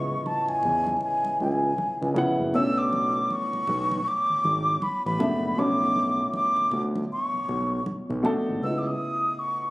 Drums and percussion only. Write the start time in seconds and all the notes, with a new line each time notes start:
0.26 high conga
0.48 muted conga
0.63 low conga
0.87 high conga
1.01 muted conga
1.25 muted conga
1.40 high conga
1.78 high conga
2.02 muted conga
2.16 high conga, low conga
2.54 muted conga
2.93 high conga
3.30 high conga
3.53 muted conga
3.67 low conga
3.91 high conga
4.44 high conga
4.82 high conga
5.06 muted conga
5.20 high conga, low conga
5.96 high conga
6.33 muted conga, high conga
6.56 muted conga
6.71 low conga
6.96 high conga
7.49 high conga
7.86 high conga
8.10 muted conga
8.25 high conga, low conga